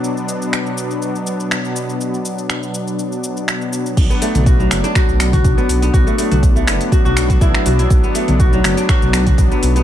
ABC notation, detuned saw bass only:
X:1
M:4/4
L:1/16
Q:"Swing 16ths" 1/4=122
K:Bm
V:1 name="Detuned saw bass" clef=bass
z16 | z16 | B,,, z2 B,,,3 F,,, z2 B,,,3 B,,, z B,,,2 | B,,, z2 B,,,3 F,,, z2 B,,,3 B,,, z B,,,2 |
B,,, z2 B,,,3 F,,, z2 B,,,3 B,,, z B,,,2 |]